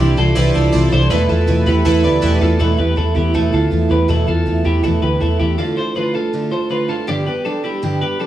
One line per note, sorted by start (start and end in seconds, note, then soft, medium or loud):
0.00 0.15 C2 loud
0.00 0.18 C3 medium
0.00 0.18 E3 loud
0.00 0.18 G3 medium
0.00 0.17 D4 medium
0.00 0.16 E4 medium
0.00 0.17 E4 medium
0.00 0.16 E4 medium
0.00 0.16 G4 medium
0.00 0.17 C5 medium
0.00 0.17 D5 loud
0.17 0.33 C2 medium
0.17 0.35 G3 medium
0.17 0.36 D4 medium
0.17 0.31 E4 medium
0.17 0.36 E4 medium
0.17 0.37 F4 medium
0.17 0.36 A4 medium
0.17 0.31 C5 medium
0.17 0.31 D5 medium
0.35 0.52 C2 loud
0.35 0.55 E3 medium
0.35 0.55 G3 medium
0.35 0.54 D4 medium
0.35 0.49 E4 loud
0.35 0.53 E4 medium
0.35 0.56 G4 medium
0.35 0.55 B4 medium
0.35 0.49 C5 loud
0.35 0.49 D5 loud
0.54 0.70 C2 medium
0.54 0.73 G3 soft
0.54 0.73 D4 medium
0.54 0.68 E4 medium
0.54 0.73 E4 medium
0.54 0.91 F4 medium
0.54 0.90 A4 medium
0.54 0.68 C5 medium
0.54 0.68 D5 loud
0.72 0.89 C2 loud
0.72 0.92 C3 medium
0.72 0.92 E3 medium
0.72 0.92 G3 medium
0.72 0.92 D4 loud
0.72 0.86 E4 loud
0.72 0.90 E4 medium
0.72 0.86 C5 loud
0.72 0.86 D5 loud
0.91 1.08 C2 loud
0.91 1.11 G3 soft
0.91 1.11 D4 medium
0.91 1.05 E4 medium
0.91 1.11 E4 medium
0.91 1.12 A4 medium
0.91 1.05 C5 medium
0.91 1.10 C5 medium
0.91 1.05 D5 medium
1.10 1.29 E2 medium
1.10 1.26 E2 loud
1.10 1.29 B2 medium
1.10 1.29 E3 medium
1.10 1.29 A3 medium
1.10 1.28 B3 medium
1.10 1.24 E4 loud
1.10 1.27 E4 loud
1.10 1.30 E4 medium
1.10 1.24 A4 loud
1.10 1.24 B4 loud
1.10 1.29 B4 loud
1.28 1.45 E2 medium
1.28 1.47 E3 soft
1.28 1.47 A3 medium
1.28 1.47 B3 medium
1.28 1.47 E4 medium
1.28 1.42 E4 medium
1.28 1.65 F4 medium
1.28 1.43 A4 medium
1.28 1.65 A4 medium
1.28 1.43 B4 medium
1.47 1.66 E2 medium
1.47 1.64 E2 loud
1.47 1.66 B2 medium
1.47 1.67 E3 medium
1.47 1.66 A3 medium
1.47 1.65 B3 medium
1.47 1.61 E4 medium
1.47 1.64 E4 medium
1.47 1.61 A4 medium
1.47 1.61 B4 medium
1.66 1.82 E2 medium
1.66 1.83 E3 soft
1.66 1.84 A3 medium
1.66 1.85 B3 medium
1.66 1.85 E4 medium
1.66 1.80 E4 medium
1.66 1.85 G4 medium
1.66 1.80 A4 medium
1.66 1.80 B4 medium
1.66 1.86 B4 medium
1.84 2.05 E2 loud
1.84 2.04 E3 medium
1.84 2.03 A3 medium
1.84 2.02 B3 medium
1.84 1.98 E4 loud
1.84 2.04 E4 medium
1.84 2.02 E4 medium
1.84 1.98 A4 loud
1.84 2.04 A4 medium
1.84 1.98 B4 loud
2.03 2.20 D2 medium
2.03 2.21 E3 soft
2.03 2.21 A3 soft
2.03 2.22 B3 medium
2.03 2.22 E4 medium
2.03 2.17 E4 medium
2.03 2.21 G4 medium
2.03 2.17 A4 medium
2.03 2.23 B4 medium
2.03 2.17 D5 medium
2.03 2.21 E5 medium
2.22 2.41 E2 medium
2.22 2.38 E2 loud
2.22 2.41 B2 medium
2.22 2.41 E3 medium
2.22 2.41 A3 medium
2.22 2.40 B3 medium
2.22 2.36 E4 loud
2.22 2.39 E4 medium
2.22 2.42 E4 medium
2.22 2.41 G4 medium
2.22 2.35 A4 medium
2.22 2.35 B4 loud
2.22 2.57 A5 medium
2.41 2.57 E2 medium
2.41 2.59 E3 soft
2.41 2.59 A3 medium
2.41 2.59 B3 medium
2.41 2.60 E4 medium
2.41 2.54 E4 medium
2.41 2.60 F4 medium
2.41 2.55 A4 medium
2.41 2.59 A4 medium
2.41 2.55 B4 medium
2.59 2.78 E2 medium
2.59 2.75 E2 loud
2.59 2.79 B2 medium
2.59 2.79 E3 medium
2.59 2.78 A3 medium
2.59 2.77 B3 medium
2.59 2.78 E4 medium
2.59 2.77 E4 medium
2.59 2.78 A4 loud
2.78 2.94 E2 medium
2.78 2.95 E3 soft
2.78 2.96 A3 medium
2.78 2.97 B3 medium
2.78 2.97 E4 medium
2.78 2.97 G4 medium
2.78 2.97 B4 medium
2.96 3.13 E2 medium
2.96 3.15 E3 medium
2.96 3.15 A3 medium
2.96 3.14 B3 medium
2.96 3.16 E4 medium
2.96 3.13 E4 medium
2.96 3.15 A4 medium
3.15 3.31 E2 medium
3.15 3.34 E3 soft
3.15 3.33 A3 soft
3.15 3.34 B3 medium
3.15 3.34 E4 medium
3.15 3.34 G4 medium
3.34 3.53 E2 medium
3.34 3.50 E2 loud
3.34 3.53 B2 medium
3.34 3.53 E3 medium
3.34 3.53 A3 medium
3.34 3.52 B3 medium
3.34 3.51 E4 medium
3.34 3.54 E4 medium
3.34 3.52 A4 medium
3.52 3.69 D2 medium
3.52 3.70 E3 soft
3.52 3.71 A3 soft
3.52 3.71 B3 medium
3.52 3.71 E4 medium
3.52 3.89 F4 soft
3.52 3.88 A4 medium
3.71 3.87 E2 medium
3.71 3.90 E3 medium
3.71 3.89 A3 medium
3.71 3.89 B3 medium
3.71 3.88 E4 medium
3.89 4.06 E2 medium
3.89 4.08 E3 medium
3.89 4.08 A3 medium
3.89 4.08 B3 medium
3.89 4.08 E4 medium
3.89 4.09 G4 medium
3.89 4.09 B4 medium
4.08 4.27 E2 medium
4.08 4.24 E2 medium
4.08 4.27 B2 medium
4.08 4.28 E3 medium
4.08 4.27 A3 medium
4.08 4.27 B3 medium
4.08 4.26 E4 medium
4.08 4.28 E4 medium
4.08 4.26 A4 medium
4.27 4.43 E2 medium
4.27 4.44 E3 soft
4.27 4.46 A3 soft
4.27 4.46 B3 medium
4.27 4.46 E4 medium
4.27 4.63 F4 medium
4.27 4.63 A4 medium
4.46 4.62 E2 medium
4.46 4.65 E3 medium
4.46 4.65 A3 medium
4.46 4.64 B3 medium
4.46 4.63 E4 medium
4.64 4.81 E2 medium
4.64 4.83 E3 soft
4.64 4.83 A3 soft
4.64 4.83 B3 soft
4.64 4.83 E4 medium
4.64 4.83 G4 medium
4.83 5.02 E2 medium
4.83 4.99 E2 loud
4.83 5.02 B2 medium
4.83 5.03 E3 medium
4.83 5.02 A3 medium
4.83 5.01 B3 medium
4.83 5.02 E4 medium
4.83 5.01 E4 medium
4.83 5.02 A4 medium
5.02 5.18 D2 medium
5.02 5.19 E3 soft
5.02 5.20 A3 soft
5.02 5.21 B3 medium
5.02 5.21 E4 medium
5.02 5.20 G4 soft
5.02 5.21 B4 medium
5.20 5.37 E2 medium
5.20 5.39 E3 medium
5.20 5.40 A3 medium
5.20 5.39 B3 medium
5.20 5.39 E4 medium
5.20 5.38 E4 medium
5.20 5.39 A4 medium
5.39 5.56 E2 medium
5.39 5.58 E3 soft
5.39 5.58 A3 soft
5.39 5.59 B3 soft
5.39 5.58 E4 soft
5.39 5.59 E4 soft
5.39 5.58 G4 medium
5.58 5.77 D3 medium
5.58 5.77 A3 medium
5.58 5.76 D4 medium
5.58 5.77 F4 medium
5.58 5.75 F4 medium
5.58 5.77 A4 medium
5.76 5.95 A3 soft
5.76 5.95 D4 soft
5.76 5.96 F4 soft
5.76 5.96 A4 medium
5.76 5.96 C5 medium
5.95 6.14 D3 medium
5.95 6.15 A3 medium
5.95 6.14 D4 medium
5.95 6.14 F4 medium
5.95 6.12 F4 medium
5.95 6.15 B4 medium
6.14 6.32 A3 soft
6.14 6.33 D4 soft
6.14 6.33 F4 soft
6.14 6.50 F4 soft
6.14 6.50 A4 medium
6.33 6.52 D3 medium
6.33 6.52 A3 medium
6.33 6.51 D4 medium
6.33 6.50 F4 medium
6.51 6.69 A3 soft
6.51 6.70 D4 soft
6.51 6.70 F4 soft
6.51 6.71 A4 soft
6.51 6.70 C5 medium
6.69 6.89 D3 soft
6.69 6.89 A3 medium
6.69 6.88 D4 medium
6.69 6.89 F4 soft
6.69 6.87 F4 medium
6.69 6.89 B4 medium
6.88 7.08 A3 soft
6.88 7.07 D4 soft
6.88 7.08 F4 soft
6.88 7.08 A4 medium
7.07 7.26 G2 medium
7.07 7.27 D3 medium
7.07 7.27 G3 medium
7.07 7.27 B3 medium
7.07 7.26 D4 medium
7.07 7.27 D4 medium
7.07 7.26 G4 medium
7.07 7.25 G4 medium
7.26 7.43 G3 soft
7.26 7.45 B3 soft
7.26 7.45 D4 soft
7.26 7.45 G4 medium
7.26 7.45 B4 medium
7.45 7.64 G3 soft
7.45 7.64 B3 medium
7.45 7.64 D4 soft
7.45 7.63 D4 medium
7.45 7.62 G4 medium
7.45 7.63 A4 medium
7.63 7.82 G3 soft
7.63 7.82 B3 soft
7.63 7.82 D4 soft
7.63 8.00 E4 soft
7.63 7.82 G4 soft
7.63 7.99 G4 medium
7.82 8.01 G2 medium
7.82 8.02 D3 medium
7.82 8.02 G3 medium
7.82 8.01 B3 medium
7.82 8.01 D4 medium
7.82 8.00 G4 medium
8.01 8.18 G3 soft
8.01 8.19 B3 soft
8.01 8.20 D4 soft
8.01 8.20 G4 soft
8.01 8.20 G4 medium
8.01 8.20 B4 medium
8.19 8.27 G3 medium
8.19 8.27 B3 medium
8.19 8.27 D4 soft
8.19 8.27 D4 medium
8.19 8.27 G4 medium
8.19 8.27 A4 medium